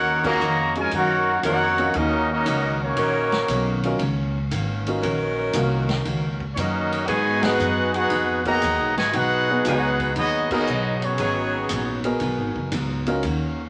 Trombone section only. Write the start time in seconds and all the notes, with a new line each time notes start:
Already playing: A#3 C#4 F#4
0.24 C#3 F#3 A#3
0.76 G#3
0.93 A#3 C#4 F#4
1.44 A#3 C#4 F#4
1.97 F#3 A#3 D#4
2.32 F#3 A#3 D#4
2.82 F#3 A#3 C#4
6.56 F#3 A#3 D#4
7.08 B2 D#3 G#3
7.42 B3 D#4 F#4
7.94 B3 D#4 F#4
8.44 D#3 F#3 A#3
8.95 B2 D#3 G#3
9.10 B3 D#4 F#4
9.63 B3 D#4 F#4
10.13 F#3 B3 D#4
10.50 F#3 B3 D#4
10.99 D#3 F#3 C#4